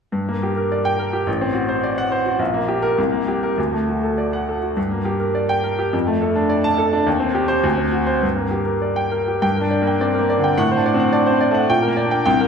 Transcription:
0.12 G2
0.29 A#3
0.43 G4
0.57 A#4
0.72 D5
0.85 G5
0.99 A#4
1.13 G4
1.27 A1
1.41 C4
1.54 F#4
1.69 C5
1.83 D5
1.98 F#5
2.12 C5
2.26 F#4
2.39 A#1
2.54 A#3
2.68 G4
2.82 A#4
2.98 C2
3.13 A#3
3.28 G4
3.43 A#4
3.58 D2
3.73 A3
3.88 F#4
4.03 A4
4.18 D5
4.33 F#5
4.49 A4
4.63 F#4
4.77 G2
4.91 A#3
5.05 G4
5.20 A#4
5.35 D5
5.49 G5
5.64 A#4
5.79 G4
5.93 F2
6.07 A3
6.22 A4
6.35 D4
6.50 D5
6.64 A5
6.78 A4
6.93 D4
7.07 D#2
7.20 C4
7.35 G4
7.48 C5
7.63 D2
7.78 C4
7.92 F#4
8.07 C5
8.22 G2
8.36 A#3
8.51 G4
8.65 A#4
8.82 D5
8.96 G5
9.11 A#4
9.28 G4
9.42 G2 G5
9.57 A#4
9.61 D4
9.71 D5
9.82 A#3
9.87 G5
10.01 C4 D5
10.14 A#4
10.19 A#3
10.30 D5
10.39 D3
10.44 G5
10.58 A2 F#5
10.71 C5
10.77 D4
10.86 D5
10.94 C4
11.00 F#5
11.12 D4 D5
11.26 C4 C5
11.41 D5
11.51 A3 F#5
11.69 A#2 G5
11.82 A#4
11.88 A#3
11.97 D5
12.06 D4
12.11 G5
12.26 C2 G5
12.41 A#4

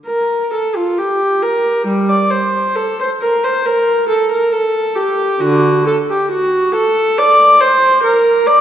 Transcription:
0.06 A#4
0.53 A4
0.76 F4
0.98 G4
1.42 A#4
1.87 G3
2.09 D5
2.31 C5
2.76 A4
3.01 C5
3.21 A#4
3.44 C5
3.66 A#4
4.09 A4
4.32 A#4
4.52 A4
4.96 G4
5.40 D3 F#4
5.87 A4
6.10 G4
6.31 F#4
6.75 A4
7.19 D5
7.61 C5
8.03 A#4
8.47 D5

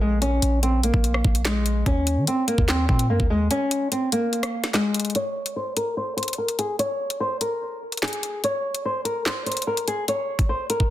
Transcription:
Already playing: A#1
0.01 G#3
0.22 C#4, closed hi-hat
0.42 A#1, closed hi-hat
0.63 C4, closed hi-hat
0.83 A#3, closed hi-hat
0.94 A#1, kick
1.04 closed hi-hat
1.14 cross-stick
1.25 A#1, kick
1.35 closed hi-hat
1.45 G#3, snare, clap, closed hi-hat
1.66 closed hi-hat
1.86 D#2 C#4, kick, closed hi-hat
2.07 closed hi-hat
2.17 D#3
2.27 C4, closed hi-hat
2.47 A#3, closed hi-hat
2.58 D#2, kick
2.68 C4, snare, clap, closed hi-hat
2.89 A#2 C4, kick
2.99 closed hi-hat
3.10 F#2 A#3
3.20 D#2, kick
3.30 G#3
3.51 C#4, closed hi-hat
3.71 closed hi-hat
3.92 C4, closed hi-hat
4.12 A#3, closed hi-hat
4.33 closed hi-hat
4.43 cross-stick, closed hi-hat
4.64 snare, closed hi-hat
4.74 G#3, snare, clap, closed hi-hat
4.94 closed hi-hat
5.00 closed hi-hat
5.05 closed hi-hat
5.10 closed hi-hat
5.15 C#5, closed hi-hat
5.46 closed hi-hat
5.56 C5
5.77 A#4, closed hi-hat
5.97 C5
6.17 C5, closed hi-hat
6.23 closed hi-hat
6.28 closed hi-hat
6.33 closed hi-hat
6.38 A#4
6.48 closed hi-hat
6.59 G#4, closed hi-hat
6.79 C#5, closed hi-hat
7.10 closed hi-hat
7.20 C5
7.41 A#4, closed hi-hat
7.92 closed hi-hat
7.97 closed hi-hat
8.03 G#4, snare, clap, closed hi-hat
8.08 closed hi-hat
8.13 closed hi-hat
8.23 closed hi-hat
8.44 C#5, closed hi-hat
8.75 closed hi-hat
8.85 C5
9.05 A#4, closed hi-hat
9.26 C5, snare, clap
9.46 C5, closed hi-hat
9.52 closed hi-hat
9.57 closed hi-hat
9.62 closed hi-hat
9.67 A#4
9.77 closed hi-hat
9.88 G#4, closed hi-hat
10.08 C#5, closed hi-hat
10.39 kick, closed hi-hat
10.49 C5
10.70 A#4, closed hi-hat
10.80 kick

